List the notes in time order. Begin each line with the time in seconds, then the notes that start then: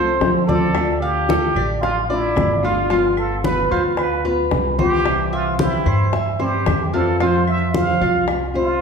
Already playing: C2 F3 A3 C4 F4 A4 C5
0.21 D2 F3 A3 C4 F4, high bongo, low bongo, high conga
0.46 F3 A3 C4 F4 A4 D5, high bongo, high conga
0.74 D3 A3 D4 F4, high bongo, high conga, claves
1.00 G4 F5, high conga
1.28 D3 A3 D4 F4 A4, high bongo, high conga
1.55 A1 D5, high bongo, high conga, claves
1.81 F4 F5, muted nylon-string guitar stroke, high bongo
1.85 high conga
2.09 A3 D4 E4 F4 D5, high bongo, high conga
2.36 G1 D3 A3 D4 F4, high bongo, low bongo, high conga, claves
2.63 A3 D4 F4, high bongo
2.90 G3 B3 F4, high bongo, high conga
3.17 A4, high conga, claves
3.43 G3 B3 F4 B4, high bongo, high conga
3.71 D2 F4 C5, high bongo
3.97 B4, muted nylon-string guitar stroke, high bongo, high conga, claves
4.24 B3 F4 B4, high bongo, high conga
4.51 C2 G3 B3 F4, high bongo, low bongo, high conga
4.78 B3 F4 G4 C5, high bongo, high conga
5.04 C3 E3 G3 C4 E4, high bongo, high conga, claves
5.33 F4 E5, high conga
5.58 E3 G3 C4 E4 G4, high bongo, high conga
5.86 G2 C5, high bongo, high conga, claves
6.12 E5, muted nylon-string guitar stroke, high bongo, high conga
6.39 E3 G3 C4 E4 G4 C5, high bongo, high conga
6.66 F2 E3 G3 C4 E4, high bongo, low bongo, high conga, claves
6.93 E3 G3 C4 E4 F4 A4, high bongo
7.20 F3 G3 C4 F4 C5, high bongo, high conga
7.47 E5, high conga, claves
7.73 F3 G3 C4 F4 C5 F5, high bongo, high conga
8.01 C2 F4, high bongo
8.28 muted nylon-string guitar stroke, high bongo, high conga, claves
8.54 G3 C4 F4 C5, high bongo, high conga